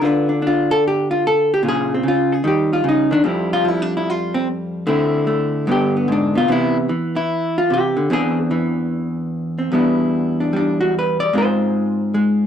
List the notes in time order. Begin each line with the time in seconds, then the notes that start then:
0.02 D3 D4 F4 B4
0.29 D4
0.42 D4
0.47 F4
0.71 A4
0.88 G4
1.11 F4
1.27 A4
1.54 G4
1.63 A#2 C#3 F4
1.69 G#4
1.94 C4
2.03 C#3
2.08 F4
2.32 G#4
2.44 D#3 G3 G4
2.73 F4
2.84 C#3
2.89 D#4
3.11 D#3 D4
3.24 F2 F3 G3 C4
3.28 E4
3.53 F4
3.65 F3 E4
3.82 D4
3.97 E4
4.10 F4
4.34 C4
4.87 D3 A3 C4 E4
5.27 A3
5.67 G2 D3 B3 D4
5.71 G4
5.97 B3
6.08 G#2
6.12 D4
6.35 B2 F4
6.48 C3 E3 B3 E4
6.89 E3
7.16 E4
7.58 F4
7.70 C3 G4
7.97 D3
8.10 E2 E3 C4 D4 G#4
8.51 E3
9.59 C4
9.72 E2 G3 B3 D4 E4
10.40 D4
10.53 G3 D4
10.81 F#4
10.99 B4
11.20 D5
11.33 G#2 G#3 C4 F4
11.38 C5
12.14 G#3